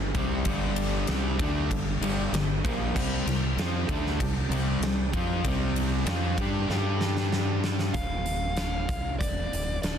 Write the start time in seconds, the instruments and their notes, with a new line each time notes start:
Already playing: fingered electric bass G1, tonewheel organ G3 D4 G4
0.14 fingered electric bass C2, overdriven electric guitar C3 G3 C4, kick, ride
0.45 fingered electric bass G1, overdriven electric guitar G2 D3 G3, kick, ride
0.76 ride
1.07 fingered electric bass C2, overdriven electric guitar C3 G3 C4, snare, ride
1.39 fingered electric bass D2, overdriven electric guitar D3 A3 D4, kick, ride
1.70 fingered electric bass G1, overdriven electric guitar G2 D3, kick, ride
2.01 fingered electric bass G1, overdriven electric guitar G2 D3 G3, ride
2.32 fingered electric bass G1, overdriven electric guitar G2 D3, snare, ride
2.63 fingered electric bass A#1, overdriven electric guitar A#2 F3 A#3, kick, ride
2.94 fingered electric bass C2, overdriven electric guitar C3 G3 C4, tonewheel organ C4 D5, kick, crash
3.26 fingered electric bass C2, overdriven electric guitar C3 G3, snare, ride
3.57 fingered electric bass F2, overdriven electric guitar F3 C4 F4, snare, ride
3.88 fingered electric bass D2, overdriven electric guitar D3 A3 D4, kick, ride
4.06 snare
4.19 fingered electric bass C2, overdriven electric guitar C3 G3, kick, ride
4.49 fingered electric bass C2, overdriven electric guitar C3 G3 C4, ride
4.80 fingered electric bass C2, overdriven electric guitar C3, snare, ride
4.85 overdriven electric guitar G3
5.13 fingered electric bass F2, overdriven electric guitar F3 C4 F4, kick, ride
5.44 fingered electric bass C2, overdriven electric guitar C3 G3 C4, kick, ride
5.76 ride
6.05 fingered electric bass F2, overdriven electric guitar F3 C4 F4, snare, ride
6.37 fingered electric bass G2, overdriven electric guitar G3 D4 G4, kick, ride
6.68 fingered electric bass G2, tonewheel organ G3 D4 A4, overdriven electric guitar G3 D4 G4, snare
7.01 snare
7.17 snare
7.32 snare
7.64 snare
7.79 snare
7.94 fingered electric bass D1, lead electric guitar F5, kick, closed hi-hat
8.26 closed hi-hat
8.57 snare, closed hi-hat
8.89 fingered electric bass C2, kick, closed hi-hat
9.19 fingered electric bass E1, lead electric guitar D5, kick, closed hi-hat
9.53 fingered electric bass D1, closed hi-hat
9.82 fingered electric bass D1, lead electric guitar D5, snare, closed hi-hat